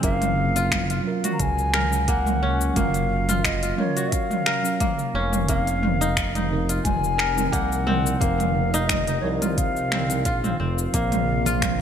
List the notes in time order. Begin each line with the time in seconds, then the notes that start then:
Already playing: C4 G#4
0.01 F#1 F#3 A#3 C#4 F4 A#4 F5, kick, closed hi-hat, shaker
0.22 closed hi-hat, mid tom, shaker
0.56 F4, closed hi-hat, shaker
0.72 finger snap, kick, closed hi-hat, mid tom, shaker
0.90 F4, closed hi-hat, shaker
1.03 F#3 C#4 A#4 F5
1.24 F#4, closed hi-hat, mid tom, shaker
1.33 A#5
1.40 C#2 G#5, kick, closed hi-hat, shaker
1.59 shaker
1.74 A#4, finger snap, mid tom
1.90 F#3 C#4 F#5, shaker
1.94 A#4
2.08 A#3 F#5, kick, closed hi-hat, shaker
2.26 mid tom, shaker
2.43 C#4
2.61 shaker
2.74 F#1 F#3 A#3 C#4 F4 F5, kick, closed hi-hat, mid tom, shaker
2.78 A#4
2.94 closed hi-hat, shaker
3.29 F4, closed hi-hat, mid tom, shaker
3.44 D#5, finger snap, kick, closed hi-hat, shaker
3.63 F4, closed hi-hat, shaker
3.76 F#3 C#4 A#4 C#5 F5, mid tom
3.97 F#4, closed hi-hat, shaker
4.12 F5, kick, closed hi-hat, shaker
4.31 mid tom, shaker
4.46 A#4, finger snap
4.62 F#3 C#4 A#4 F5, shaker
4.80 A#3, kick, closed hi-hat, mid tom, shaker
4.99 shaker
5.14 F1 C#4
5.33 mid tom, shaker
5.47 F3 A#3 C4 D#4 A#4 F5, kick, closed hi-hat, shaker
5.67 closed hi-hat, shaker
5.83 mid tom
6.01 D#4, closed hi-hat, shaker
6.17 finger snap, kick, closed hi-hat, shaker
6.35 D#4, closed hi-hat, mid tom, shaker
6.49 F3 C4 D#4
6.53 A#4
6.69 F4, closed hi-hat, shaker
6.85 F1 G#5, kick, closed hi-hat, mid tom, shaker
7.04 shaker
7.18 A#4, finger snap
7.35 F3 C4 D#4 A#4, mid tom, shaker
7.52 C2 A#3 F#5, kick, closed hi-hat, shaker
7.72 shaker
7.87 C4, mid tom
8.06 shaker
8.20 F1 F3 A#3 C4 D#4 F5, kick, closed hi-hat, shaker
8.24 A#4
8.40 closed hi-hat, mid tom, shaker
8.74 D#4, closed hi-hat, shaker
8.88 D#5, finger snap, kick, closed hi-hat, mid tom, shaker
9.07 D#4, closed hi-hat, shaker
9.21 C2 C3 F3 D#4 C#5
9.26 A#4
9.42 F4, closed hi-hat, mid tom, shaker
9.55 F5, kick, closed hi-hat, shaker
9.77 shaker
9.92 C4, finger snap, mid tom
10.08 F3 C4 D#4, closed hi-hat, shaker
10.12 A#4
10.25 A#1 F4, kick, closed hi-hat, shaker
10.44 C4, mid tom, shaker
10.60 F1 C4
10.79 shaker
10.92 A#1 C3 F3 A#3 C4 A#4 F5, kick, closed hi-hat, shaker
11.12 closed hi-hat, mid tom, shaker
11.33 A#3
11.46 F4, closed hi-hat, high conga, shaker
11.50 F3
11.62 finger snap, kick, closed hi-hat, mid tom, shaker